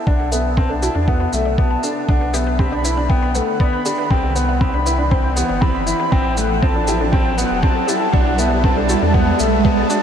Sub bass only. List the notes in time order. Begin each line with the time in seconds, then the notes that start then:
0.07 B1
0.95 E2
1.33 B1
2.09 B1
4.11 C2
5.50 G1
6.12 A1
7.51 E1
8.13 B1
9.02 E2
9.40 B1